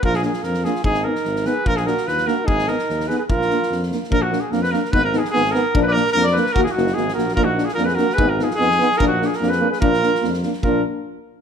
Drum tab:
SD |-ooooooo|-o-oooo-|-oooooo-|-oooooo-|
BD |o-------|o-------|o-------|o-------|

SD |-ooooooo|--o-oooo|--ooooo-|--oooooo|
BD |o-------|o-------|o-------|o-------|

SD |-ooooooo|--oooooo|--oooooo|--oooo-o|
BD |o-------|o-------|o-------|o-------|

SD |-ooooooo|--------|
BD |o-------|o-------|